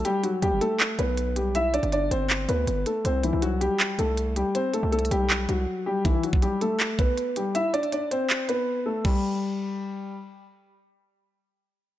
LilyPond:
<<
  \new Staff \with { instrumentName = "Grand piano" } { \time 4/4 \key e \minor \tempo 4 = 160 <g g'>8 <fis fis'>8 <g g'>8 <a a'>4 <b b'>4 <g g'>8 | <e' e''>8 <d' d''>8 <d' d''>8 <c' c''>4 <b b'>4 <a a'>8 | <c' c''>8 <e e'>8 <fis fis'>8 <g g'>4 <a a'>4 <g g'>8 | <c' c''>8 <a a'>8 <a a'>8 <g g'>4 <fis fis'>4 <g g'>8 |
<e e'>8 <fis fis'>8 <g g'>8 <a a'>4 <b b'>4 <g g'>8 | <e' e''>8 <d' d''>8 <d' d''>8 <c' c''>4 <b b'>4 <a a'>8 | g2. r4 | r1 | }
  \new Staff \with { instrumentName = "808-style bass" } { \clef bass \time 4/4 \key e \minor r4 d,16 g,,16 r4 b,,4.~ | b,,8. g,,8. g,,4 d,8 g,,8 r8 | c,8. c,4 r8. c,4~ c,16 r16 | r8. c,8. b,,4 c,8 r4 |
r1 | r1 | r1 | r1 | }
  \new DrumStaff \with { instrumentName = "Drums" } \drummode { \time 4/4 hh8 hh8 hh8 hh8 <hc hh>8 hh8 hh8 hh8 | hh8 hh16 hh16 hh8 hh8 <hc hh>8 hh8 hh8 hh8 | hh8 hh8 hh8 hh8 <hc hh>8 hh8 hh8 hh8 | hh8 hh8 \tuplet 3/2 { hh16 hh16 hh16 hh16 r16 r16 } <hc hh>8 hh8 r4 |
<hh bd>8 hh16 bd16 hh8 hh8 <hc hh>8 <hh bd>8 hh8 hh8 | hh8 hh16 hh16 hh8 hh8 <hc hh>8 hh8 r4 | <cymc bd>4 r4 r4 r4 | r4 r4 r4 r4 | }
>>